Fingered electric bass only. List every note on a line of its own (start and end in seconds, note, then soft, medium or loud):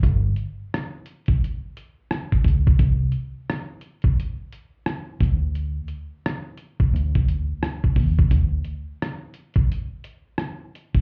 0.03 0.33 G1 loud
2.45 2.74 C#2 medium
2.80 3.09 C2 loud
5.21 5.79 D2 medium
6.93 7.52 D2 loud
7.96 8.26 D#2 medium
8.32 8.60 D2 medium
10.95 11.01 G#1 medium